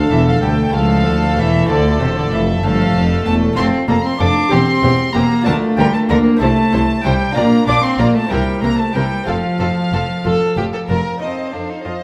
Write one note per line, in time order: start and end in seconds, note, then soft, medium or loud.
0.00 0.10 D2 medium
0.00 0.11 D2 medium
0.00 0.72 A3 medium
0.00 0.70 D4 medium
0.00 0.71 A4 soft
0.00 0.72 A4 medium
0.00 0.11 F5 medium
0.10 0.41 E1 medium
0.10 0.42 E2 medium
0.10 0.40 E2 medium
0.10 0.26 E3 medium
0.10 0.27 E5 medium
0.26 0.33 F3 medium
0.26 0.43 F5 medium
0.42 0.73 D2 medium
0.42 0.71 D2 medium
0.42 0.50 G3 medium
0.42 0.74 G5 medium
0.69 1.63 A3 medium
0.69 1.64 E4 medium
0.69 1.65 A4 medium
0.73 1.04 C#2 medium
0.73 1.05 C#2 medium
0.73 1.36 F3 medium
0.73 1.67 A3 medium
0.73 1.67 A4 medium
0.73 1.38 F5 loud
1.05 1.37 D2 medium
1.05 1.34 D2 medium
1.37 1.68 E1 medium
1.37 1.69 E2 medium
1.37 1.66 E2 medium
1.37 1.71 E3 medium
1.37 1.69 E5 medium
1.65 1.99 D2 medium
1.65 1.97 A3 medium
1.65 3.52 F4 medium
1.65 3.52 A4 medium
1.65 2.61 A4 medium
1.65 1.99 D5 medium
1.69 1.97 D2 medium
1.69 2.00 D3 medium
1.69 2.61 A3 medium
2.00 2.31 E1 medium
2.00 2.31 E2 medium
2.00 2.29 E2 medium
2.00 2.15 C3 medium
2.00 2.16 C5 medium
2.16 2.31 D3 medium
2.16 2.32 D5 medium
2.31 2.62 F1 medium
2.31 2.62 F2 medium
2.31 2.60 F2 medium
2.31 2.40 E3 medium
2.31 2.63 E5 medium
2.63 2.93 G1 medium
2.63 2.91 G2 medium
2.63 2.94 G2 medium
2.63 3.25 F3 medium
2.63 3.55 A3 medium
2.63 3.55 A4 medium
2.63 3.26 F5 loud
2.94 3.25 F1 medium
2.94 3.22 F2 medium
2.94 3.25 F2 medium
3.25 3.56 E1 medium
3.25 3.56 E2 medium
3.25 3.54 E2 medium
3.25 3.56 A3 medium
3.25 3.33 A5 loud
3.53 4.46 A3 medium
3.53 3.65 A3 medium
3.53 3.88 C4 loud
3.53 4.47 F4 medium
3.53 4.48 A4 medium
3.53 3.65 C6 loud
3.57 3.65 F1 medium
3.57 3.65 F2 medium
3.57 3.85 F2 medium
3.57 3.65 A4 medium
3.88 3.97 F1 medium
3.88 4.16 F2 medium
3.88 3.97 F2 medium
3.88 3.97 A3 medium
3.88 3.94 A#3 medium
3.88 3.97 A4 medium
3.88 4.04 A#5 medium
4.04 4.19 C4 medium
4.04 4.19 C6 medium
4.20 4.28 F1 medium
4.20 4.48 F2 medium
4.20 4.28 F2 medium
4.20 4.29 A3 medium
4.20 4.53 D4 loud
4.20 4.28 A4 medium
4.20 4.51 D6 loud
4.49 4.60 E1 medium
4.49 4.80 E2 medium
4.49 4.60 E2 medium
4.49 5.14 C4 loud
4.49 4.60 C4 medium
4.49 5.42 G4 medium
4.49 4.60 G4 medium
4.49 5.42 C5 medium
4.49 5.14 C6 loud
4.83 4.91 E1 medium
4.83 5.11 E2 medium
4.83 4.92 E2 medium
4.83 4.92 C4 medium
4.83 4.91 G4 medium
5.14 5.23 E1 medium
5.14 5.43 E2 medium
5.14 5.23 E2 medium
5.14 5.48 A#3 loud
5.14 5.23 C4 medium
5.14 5.23 G4 medium
5.14 5.46 A#5 loud
5.41 6.36 A#3 medium
5.41 6.36 F4 medium
5.41 6.37 D5 medium
5.46 5.55 D2 medium
5.46 5.74 D3 medium
5.46 5.55 D3 medium
5.46 5.80 A3 loud
5.46 5.55 F4 medium
5.46 5.54 A#4 medium
5.46 5.54 A5 loud
5.77 5.86 D2 medium
5.77 6.06 D3 medium
5.77 5.86 D3 medium
5.77 5.96 G3 loud
5.77 5.86 F4 medium
5.77 5.86 A#4 medium
5.77 5.93 G5 loud
5.94 6.11 A3 medium
5.94 6.00 A5 medium
6.09 6.18 D2 medium
6.09 6.37 D3 medium
6.09 6.18 D3 medium
6.09 6.41 A#3 loud
6.09 6.18 F4 medium
6.09 6.17 A#4 medium
6.09 6.17 A#5 medium
6.36 7.30 C4 medium
6.36 7.31 E4 medium
6.36 7.32 E5 medium
6.36 7.03 A5 loud
6.41 6.49 C2 medium
6.41 6.69 C3 medium
6.41 6.50 C3 medium
6.41 7.03 A3 medium
6.41 6.50 E4 medium
6.41 6.49 C5 medium
6.72 6.81 C2 medium
6.72 7.01 C3 medium
6.72 6.82 C3 medium
6.72 6.80 E4 medium
6.72 6.81 C5 medium
7.03 7.13 C2 medium
7.03 7.32 C3 medium
7.03 7.13 C3 medium
7.03 7.35 G3 medium
7.03 7.13 E4 medium
7.03 7.13 C5 medium
7.03 7.35 G5 loud
7.31 8.26 D4 medium
7.31 8.26 F4 medium
7.31 8.27 D5 medium
7.31 7.67 A#5 loud
7.35 7.45 A#1 medium
7.35 7.64 A#2 medium
7.35 7.44 A#2 medium
7.35 7.67 A#3 loud
7.35 7.44 F4 medium
7.35 7.44 D5 medium
7.67 7.76 A#1 medium
7.67 7.75 A#2 medium
7.67 7.96 A#2 medium
7.67 7.83 D4 medium
7.67 7.75 F4 medium
7.67 7.76 D5 medium
7.67 7.83 D6 loud
7.83 8.00 C4 medium
7.83 7.99 C6 medium
7.99 8.08 A#1 medium
7.99 8.07 A#2 medium
7.99 8.28 A#2 medium
7.99 8.16 A#3 medium
7.99 8.07 F4 medium
7.99 8.08 D5 medium
7.99 8.15 A#5 loud
8.15 8.30 A3 medium
8.15 8.31 A5 medium
8.27 9.22 C4 medium
8.27 9.23 E4 medium
8.27 9.24 A#4 medium
8.31 8.40 C2 medium
8.31 8.39 C3 medium
8.31 8.60 C3 medium
8.31 8.64 G3 medium
8.31 8.39 E4 medium
8.31 8.40 A#4 medium
8.31 8.63 G5 medium
8.63 8.71 C2 medium
8.63 8.71 C3 medium
8.63 8.92 C3 medium
8.63 8.80 A#3 medium
8.63 8.71 E4 medium
8.63 8.71 A#4 medium
8.63 8.79 A#5 loud
8.78 8.95 A3 medium
8.78 8.95 A5 medium
8.94 9.03 C2 medium
8.94 9.04 C3 medium
8.94 9.24 C3 medium
8.94 9.27 G3 medium
8.94 9.04 E4 medium
8.94 9.03 A#4 medium
8.94 9.27 G5 loud
9.24 11.16 C4 medium
9.24 11.17 F4 medium
9.24 9.35 F4 medium
9.24 11.17 A4 medium
9.24 10.90 F5 medium
9.28 9.36 F1 medium
9.28 9.57 F2 medium
9.28 9.36 F2 medium
9.28 10.86 F3 medium
9.28 9.36 A4 medium
9.60 9.68 F1 medium
9.60 9.69 F2 medium
9.60 9.90 F2 medium
9.60 9.68 F4 medium
9.60 9.68 A4 medium
9.93 10.01 F1 medium
9.93 10.01 F2 medium
9.93 10.22 F2 medium
9.93 10.01 F4 medium
9.93 10.01 A4 medium
10.24 10.33 F1 medium
10.24 10.54 F2 medium
10.24 10.34 F2 medium
10.24 10.32 F4 medium
10.24 10.55 A4 medium
10.57 10.65 F1 medium
10.57 10.86 F2 medium
10.57 10.66 F2 medium
10.57 10.65 F4 medium
10.57 10.64 G4 medium
10.73 10.80 A4 medium
10.89 10.98 F1 medium
10.89 11.18 F2 medium
10.89 10.98 F2 medium
10.89 10.98 F4 medium
10.89 11.21 A#4 medium
11.18 12.03 A3 soft
11.18 11.54 C4 medium
11.18 12.03 D#4 soft
11.18 12.03 F4 soft
11.18 11.51 C5 soft
11.18 11.51 A5 soft
11.22 11.30 F2 soft
11.22 11.51 F2 soft
11.22 11.52 D#5 soft
11.53 11.82 F2 soft
11.53 11.62 F2 soft
11.53 11.71 D4 medium
11.53 11.86 A4 soft
11.53 11.85 C5 soft
11.53 11.86 F5 soft
11.70 11.85 D#4 medium
11.85 12.03 F2 soft
11.85 11.94 F2 soft
11.85 11.93 F4 medium
11.85 12.03 C5 soft
11.85 12.03 D#5 soft
11.85 12.03 A5 soft